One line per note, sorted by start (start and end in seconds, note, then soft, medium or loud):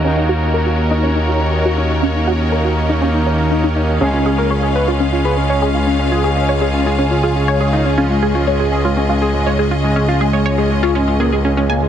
0.00 3.99 D#2 medium
0.00 11.88 C#4 medium
0.00 3.97 F#4 medium
0.00 3.97 A#4 medium
0.04 3.98 D#3 medium
0.04 3.98 A#3 medium
0.04 0.12 C#4 loud
0.04 3.98 D#4 medium
0.04 3.97 C#5 medium
0.17 0.24 D#4 medium
0.29 0.33 F#4 loud
0.54 0.65 A#4 medium
0.66 0.77 F#4 medium
0.91 1.02 D#4 loud
1.03 1.11 C#4 medium
1.16 1.23 D#4 medium
1.28 1.39 F#4 medium
1.53 1.64 A#4 loud
1.65 1.73 F#4 medium
1.78 1.82 D#4 medium
2.03 2.10 C#4 loud
2.15 2.22 D#4 medium
2.27 2.32 F#4 loud
2.52 2.63 A#4 medium
2.65 2.75 F#4 medium
2.89 3.00 D#4 loud
3.02 3.09 C#4 medium
3.14 3.21 D#4 medium
3.27 3.37 C#5 medium
3.51 3.62 D#4 medium
3.64 3.68 D#4 medium
3.76 3.83 D#4 loud
4.01 11.88 C#2 medium
4.01 7.95 C#3 medium
4.01 7.95 G#3 medium
4.01 4.08 C#4 loud
4.01 7.95 C#4 medium
4.01 11.88 F4 medium
4.01 4.09 G#4 loud
4.01 11.88 G#4 medium
4.01 7.94 F5 medium
4.13 4.21 C#4 medium
4.13 4.21 F4 medium
4.26 4.34 C#4 medium
4.26 4.30 G#4 loud
4.38 4.46 A#4 medium
4.38 4.45 C#5 medium
4.51 4.58 C#4 medium
4.51 4.61 C#5 medium
4.63 4.71 C#4 medium
4.63 4.74 G#4 medium
4.75 4.83 B4 medium
4.88 4.96 C#4 medium
4.88 4.99 F4 loud
5.00 5.07 C#4 medium
5.13 5.20 C#4 medium
5.13 5.20 F4 medium
5.25 5.36 G#4 medium
5.25 5.33 B4 medium
5.37 5.45 C#4 medium
5.50 5.58 C#4 medium
5.50 5.61 C#5 loud
5.62 5.70 C#4 medium
5.62 5.69 G#4 loud
5.75 5.79 F4 medium
5.87 5.95 C#4 medium
5.99 6.07 C#4 medium
5.99 6.07 C#4 loud
6.12 6.19 F4 medium
6.12 6.20 G#4 medium
6.24 6.32 C#4 medium
6.24 6.28 G#4 loud
6.36 6.44 C#4 medium
6.36 6.44 C#5 medium
6.49 6.60 C#5 loud
6.61 6.69 C#4 medium
6.61 6.72 G#4 medium
6.74 6.82 C#4 medium
6.86 6.97 F4 medium
6.86 6.94 G#4 medium
6.98 7.06 C#4 medium
7.11 7.19 C#4 medium
7.11 7.18 F4 medium
7.23 7.31 F4 medium
7.23 7.34 G#4 medium
7.36 7.44 C#4 medium
7.48 7.56 C#4 medium
7.48 7.59 C#5 loud
7.61 7.68 C#4 medium
7.61 7.68 G#4 medium
7.73 7.81 D#4 medium
7.73 7.77 F4 medium
7.85 7.93 C#4 medium
7.98 11.88 C#3 medium
7.98 11.88 G#3 medium
7.98 11.88 C#4 medium
7.98 8.05 C#4 loud
7.98 8.06 F4 medium
7.98 11.88 D#5 medium
8.10 8.18 G#3 medium
8.10 8.17 F4 medium
8.22 8.30 G#3 medium
8.22 8.27 G#4 loud
8.35 8.43 F4 loud
8.35 8.42 C#5 medium
8.47 8.55 G#3 medium
8.47 8.58 C#5 medium
8.60 8.68 G#3 medium
8.60 8.70 G#4 medium
8.72 8.80 G#4 medium
8.85 8.92 G#3 medium
8.85 8.95 F4 loud
8.97 9.04 C#4 medium
9.09 9.17 G#3 medium
9.09 9.17 F4 medium
9.22 9.30 G#4 medium
9.22 9.33 G#4 medium
9.34 9.42 G#3 medium
9.46 9.54 G#3 medium
9.46 9.57 C#5 medium
9.59 9.67 G#3 medium
9.59 9.66 G#4 medium
9.71 9.76 F4 medium
9.84 9.92 G#3 medium
9.96 10.04 G#3 medium
9.96 10.03 C#4 loud
10.08 10.16 F4 medium
10.21 10.29 G#3 medium
10.21 10.25 G#4 loud
10.33 10.41 G#3 medium
10.33 10.40 C#5 medium
10.46 10.56 C#5 loud
10.58 10.66 G#3 medium
10.58 10.69 G#4 medium
10.70 10.78 G#3 medium
10.83 10.91 C#4 medium
10.83 10.94 F4 loud
10.95 11.03 G#3 medium
10.95 11.02 C#4 loud
11.08 11.15 G#3 medium
11.08 11.15 F4 medium
11.20 11.28 A#3 medium
11.20 11.31 G#4 medium
11.32 11.40 G#3 medium
11.32 11.37 G#4 medium
11.45 11.53 G#3 medium
11.45 11.52 C#4 medium
11.57 11.65 G#3 medium
11.57 11.68 C#4 medium
11.70 11.77 A#3 medium
11.70 11.74 G#5 loud
11.82 11.88 G#3 medium